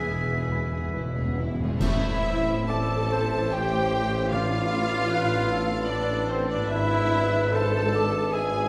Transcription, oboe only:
0.00 1.43 E5 medium
2.69 3.14 D5 medium
3.12 4.34 C5 medium
4.33 5.12 D5 medium
5.11 5.53 B4 medium
5.52 6.70 A4 medium
6.71 7.56 B4 medium
7.55 7.95 C5 loud
7.95 8.35 D5 medium
8.34 8.69 E5 loud

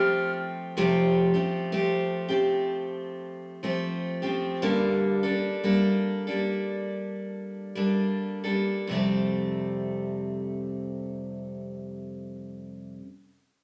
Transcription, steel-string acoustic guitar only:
0.00 0.76 F3 medium
0.00 0.76 A3 medium
0.00 0.76 C4 medium
0.00 0.77 G4 medium
0.77 1.33 F2 medium
0.77 1.34 C3 medium
0.77 1.34 F3 medium
0.77 1.33 A3 medium
0.77 1.33 C4 medium
0.77 1.33 G4 medium
1.34 1.71 F3 soft
1.34 1.71 A3 soft
1.34 1.71 C4 soft
1.34 1.71 G4 soft
1.72 2.29 F3 medium
1.72 2.29 A3 medium
1.72 2.28 C4 medium
1.72 2.27 G4 medium
2.28 3.62 F3 soft
2.28 3.63 A3 soft
2.28 3.63 C4 soft
2.28 3.64 G4 medium
3.63 4.22 F3 medium
3.63 4.22 A3 medium
3.63 4.21 C4 medium
3.63 4.21 G4 medium
4.22 4.62 F3 soft
4.22 4.62 A3 soft
4.22 4.62 C4 soft
4.22 4.61 G4 soft
4.62 5.23 G2 medium
4.62 5.23 D3 medium
4.62 5.23 G3 medium
4.62 5.23 A#3 medium
4.62 5.22 D4 medium
4.62 5.22 A4 medium
5.23 5.62 G3 soft
5.23 5.63 A#3 soft
5.23 5.63 D4 soft
5.23 5.63 A4 soft
5.64 6.26 G3 medium
5.64 6.26 A#3 medium
5.64 6.26 D4 medium
5.64 6.26 A4 medium
6.27 7.74 G3 soft
6.27 7.75 A#3 soft
6.27 7.76 D4 soft
6.27 7.76 A4 soft
7.75 8.43 G3 soft
7.75 8.44 A#3 medium
7.75 8.43 D4 medium
7.75 8.42 A4 medium
8.44 8.90 G3 soft
8.44 8.90 A#3 soft
8.44 8.89 D4 soft
8.44 8.89 A4 soft
8.87 12.98 F2 medium
8.87 13.00 C3 medium
8.87 13.01 G3 medium
8.91 13.02 A3 medium
8.91 13.03 C4 medium
8.91 13.05 A4 medium

